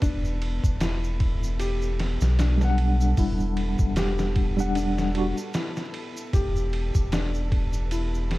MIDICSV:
0, 0, Header, 1, 6, 480
1, 0, Start_track
1, 0, Key_signature, 1, "minor"
1, 0, Tempo, 789474
1, 12, Time_signature, 4, 2, 24, 8
1, 5097, End_track
2, 0, Start_track
2, 0, Title_t, "Felt piano"
2, 0, Program_c, 0, 0
2, 0, Control_c, 0, 64, 127
2, 0, Note_on_c, 0, 62, 98
2, 0, Note_on_c, 0, 64, 65
2, 0, Note_on_c, 0, 67, 89
2, 12, Note_off_c, 0, 62, 0
2, 12, Note_on_c, 0, 62, 80
2, 242, Note_off_c, 0, 62, 0
2, 492, Note_off_c, 0, 64, 0
2, 492, Note_on_c, 0, 64, 76
2, 951, Note_off_c, 0, 64, 0
2, 969, Note_off_c, 0, 67, 0
2, 969, Note_on_c, 0, 67, 92
2, 1200, Note_off_c, 0, 67, 0
2, 1451, Note_on_c, 0, 62, 72
2, 1681, Note_off_c, 0, 62, 0
2, 1930, Note_on_c, 0, 64, 81
2, 2390, Note_off_c, 0, 64, 0
2, 2411, Note_on_c, 0, 67, 101
2, 2641, Note_off_c, 0, 67, 0
2, 2891, Note_on_c, 0, 62, 69
2, 3121, Note_off_c, 0, 62, 0
2, 3372, Note_on_c, 0, 64, 71
2, 3831, Note_off_c, 0, 64, 0
2, 3851, Note_on_c, 0, 67, 100
2, 4081, Note_off_c, 0, 67, 0
2, 4332, Note_on_c, 0, 62, 79
2, 4561, Note_off_c, 0, 62, 0
2, 4812, Note_on_c, 0, 64, 74
2, 5097, Note_off_c, 0, 64, 0
2, 5097, End_track
3, 0, Start_track
3, 0, Title_t, "Synth texture"
3, 0, Program_c, 1, 99
3, 0, Note_on_c, 1, 59, 80
3, 5, Note_on_c, 1, 69, 78
3, 5097, Note_off_c, 1, 59, 0
3, 5097, Note_off_c, 1, 69, 0
3, 5097, End_track
4, 0, Start_track
4, 0, Title_t, "Tine electric piano"
4, 0, Program_c, 2, 4
4, 1566, Note_on_c, 2, 55, 86
4, 1586, Note_on_c, 2, 62, 81
4, 1608, Note_on_c, 2, 78, 96
4, 2744, Note_off_c, 2, 55, 0
4, 2754, Note_off_c, 2, 62, 0
4, 2765, Note_off_c, 2, 78, 0
4, 2776, Note_on_c, 2, 55, 81
4, 2787, Note_on_c, 2, 62, 71
4, 2799, Note_on_c, 2, 78, 85
4, 3102, Note_off_c, 2, 55, 0
4, 3107, Note_off_c, 2, 62, 0
4, 3113, Note_off_c, 2, 78, 0
4, 3129, Note_on_c, 2, 55, 92
4, 3138, Note_on_c, 2, 62, 85
4, 3148, Note_on_c, 2, 66, 96
4, 3244, Note_off_c, 2, 55, 0
4, 3248, Note_off_c, 2, 62, 0
4, 3253, Note_off_c, 2, 66, 0
4, 5097, End_track
5, 0, Start_track
5, 0, Title_t, "Sub bass"
5, 0, Program_c, 3, 38
5, 12, Note_on_c, 3, 28, 95
5, 361, Note_off_c, 3, 28, 0
5, 387, Note_on_c, 3, 28, 78
5, 1321, Note_off_c, 3, 28, 0
5, 1343, Note_on_c, 3, 35, 83
5, 1910, Note_off_c, 3, 35, 0
5, 1932, Note_on_c, 3, 28, 97
5, 2281, Note_off_c, 3, 28, 0
5, 2305, Note_on_c, 3, 28, 81
5, 3240, Note_off_c, 3, 28, 0
5, 3850, Note_on_c, 3, 28, 96
5, 4200, Note_off_c, 3, 28, 0
5, 4227, Note_on_c, 3, 28, 82
5, 5097, Note_off_c, 3, 28, 0
5, 5097, End_track
6, 0, Start_track
6, 0, Title_t, "Drums"
6, 11, Note_on_c, 9, 51, 83
6, 12, Note_on_c, 9, 36, 97
6, 19, Note_on_c, 9, 82, 66
6, 72, Note_off_c, 9, 51, 0
6, 73, Note_off_c, 9, 36, 0
6, 80, Note_off_c, 9, 82, 0
6, 151, Note_on_c, 9, 82, 36
6, 212, Note_off_c, 9, 82, 0
6, 253, Note_on_c, 9, 51, 62
6, 314, Note_off_c, 9, 51, 0
6, 387, Note_on_c, 9, 36, 84
6, 391, Note_on_c, 9, 82, 75
6, 447, Note_off_c, 9, 36, 0
6, 452, Note_off_c, 9, 82, 0
6, 489, Note_on_c, 9, 51, 84
6, 493, Note_on_c, 9, 82, 59
6, 494, Note_on_c, 9, 38, 108
6, 550, Note_off_c, 9, 51, 0
6, 554, Note_off_c, 9, 38, 0
6, 554, Note_off_c, 9, 82, 0
6, 632, Note_on_c, 9, 82, 38
6, 693, Note_off_c, 9, 82, 0
6, 730, Note_on_c, 9, 51, 61
6, 731, Note_on_c, 9, 36, 88
6, 791, Note_off_c, 9, 51, 0
6, 792, Note_off_c, 9, 36, 0
6, 872, Note_on_c, 9, 82, 69
6, 933, Note_off_c, 9, 82, 0
6, 970, Note_on_c, 9, 51, 84
6, 977, Note_on_c, 9, 82, 55
6, 1031, Note_off_c, 9, 51, 0
6, 1038, Note_off_c, 9, 82, 0
6, 1105, Note_on_c, 9, 82, 37
6, 1166, Note_off_c, 9, 82, 0
6, 1213, Note_on_c, 9, 51, 62
6, 1217, Note_on_c, 9, 38, 50
6, 1274, Note_off_c, 9, 51, 0
6, 1278, Note_off_c, 9, 38, 0
6, 1343, Note_on_c, 9, 82, 71
6, 1351, Note_on_c, 9, 38, 57
6, 1404, Note_off_c, 9, 82, 0
6, 1411, Note_off_c, 9, 38, 0
6, 1452, Note_on_c, 9, 51, 77
6, 1456, Note_on_c, 9, 38, 95
6, 1456, Note_on_c, 9, 82, 60
6, 1513, Note_off_c, 9, 51, 0
6, 1517, Note_off_c, 9, 38, 0
6, 1517, Note_off_c, 9, 82, 0
6, 1588, Note_on_c, 9, 82, 35
6, 1589, Note_on_c, 9, 38, 48
6, 1649, Note_off_c, 9, 82, 0
6, 1650, Note_off_c, 9, 38, 0
6, 1690, Note_on_c, 9, 51, 69
6, 1751, Note_off_c, 9, 51, 0
6, 1829, Note_on_c, 9, 82, 68
6, 1890, Note_off_c, 9, 82, 0
6, 1929, Note_on_c, 9, 46, 69
6, 1930, Note_on_c, 9, 36, 107
6, 1930, Note_on_c, 9, 82, 59
6, 1990, Note_off_c, 9, 46, 0
6, 1991, Note_off_c, 9, 36, 0
6, 1991, Note_off_c, 9, 82, 0
6, 2068, Note_on_c, 9, 82, 37
6, 2128, Note_off_c, 9, 82, 0
6, 2169, Note_on_c, 9, 51, 61
6, 2230, Note_off_c, 9, 51, 0
6, 2302, Note_on_c, 9, 82, 63
6, 2304, Note_on_c, 9, 36, 90
6, 2363, Note_off_c, 9, 82, 0
6, 2365, Note_off_c, 9, 36, 0
6, 2408, Note_on_c, 9, 51, 89
6, 2412, Note_on_c, 9, 38, 111
6, 2412, Note_on_c, 9, 82, 66
6, 2468, Note_off_c, 9, 51, 0
6, 2473, Note_off_c, 9, 38, 0
6, 2473, Note_off_c, 9, 82, 0
6, 2544, Note_on_c, 9, 82, 33
6, 2548, Note_on_c, 9, 38, 54
6, 2605, Note_off_c, 9, 82, 0
6, 2609, Note_off_c, 9, 38, 0
6, 2648, Note_on_c, 9, 51, 66
6, 2650, Note_on_c, 9, 36, 89
6, 2709, Note_off_c, 9, 51, 0
6, 2710, Note_off_c, 9, 36, 0
6, 2791, Note_on_c, 9, 82, 72
6, 2851, Note_off_c, 9, 82, 0
6, 2890, Note_on_c, 9, 51, 88
6, 2900, Note_on_c, 9, 82, 66
6, 2951, Note_off_c, 9, 51, 0
6, 2960, Note_off_c, 9, 82, 0
6, 3029, Note_on_c, 9, 82, 35
6, 3031, Note_on_c, 9, 38, 48
6, 3090, Note_off_c, 9, 82, 0
6, 3091, Note_off_c, 9, 38, 0
6, 3130, Note_on_c, 9, 51, 63
6, 3191, Note_off_c, 9, 51, 0
6, 3269, Note_on_c, 9, 82, 76
6, 3329, Note_off_c, 9, 82, 0
6, 3367, Note_on_c, 9, 82, 60
6, 3368, Note_on_c, 9, 51, 77
6, 3372, Note_on_c, 9, 38, 97
6, 3427, Note_off_c, 9, 82, 0
6, 3429, Note_off_c, 9, 51, 0
6, 3433, Note_off_c, 9, 38, 0
6, 3505, Note_on_c, 9, 82, 36
6, 3508, Note_on_c, 9, 38, 45
6, 3566, Note_off_c, 9, 82, 0
6, 3569, Note_off_c, 9, 38, 0
6, 3610, Note_on_c, 9, 51, 65
6, 3671, Note_off_c, 9, 51, 0
6, 3751, Note_on_c, 9, 82, 73
6, 3811, Note_off_c, 9, 82, 0
6, 3850, Note_on_c, 9, 36, 106
6, 3851, Note_on_c, 9, 51, 81
6, 3854, Note_on_c, 9, 82, 57
6, 3911, Note_off_c, 9, 36, 0
6, 3912, Note_off_c, 9, 51, 0
6, 3915, Note_off_c, 9, 82, 0
6, 3989, Note_on_c, 9, 82, 39
6, 4050, Note_off_c, 9, 82, 0
6, 4092, Note_on_c, 9, 51, 64
6, 4153, Note_off_c, 9, 51, 0
6, 4224, Note_on_c, 9, 82, 74
6, 4225, Note_on_c, 9, 36, 81
6, 4285, Note_off_c, 9, 82, 0
6, 4286, Note_off_c, 9, 36, 0
6, 4330, Note_on_c, 9, 51, 88
6, 4331, Note_on_c, 9, 82, 58
6, 4334, Note_on_c, 9, 38, 109
6, 4391, Note_off_c, 9, 51, 0
6, 4392, Note_off_c, 9, 82, 0
6, 4395, Note_off_c, 9, 38, 0
6, 4464, Note_on_c, 9, 82, 34
6, 4525, Note_off_c, 9, 82, 0
6, 4571, Note_on_c, 9, 36, 87
6, 4571, Note_on_c, 9, 51, 64
6, 4631, Note_off_c, 9, 36, 0
6, 4632, Note_off_c, 9, 51, 0
6, 4701, Note_on_c, 9, 82, 65
6, 4762, Note_off_c, 9, 82, 0
6, 4810, Note_on_c, 9, 51, 86
6, 4815, Note_on_c, 9, 82, 62
6, 4870, Note_off_c, 9, 51, 0
6, 4876, Note_off_c, 9, 82, 0
6, 4951, Note_on_c, 9, 82, 35
6, 5012, Note_off_c, 9, 82, 0
6, 5051, Note_on_c, 9, 51, 64
6, 5055, Note_on_c, 9, 38, 47
6, 5097, Note_off_c, 9, 38, 0
6, 5097, Note_off_c, 9, 51, 0
6, 5097, End_track
0, 0, End_of_file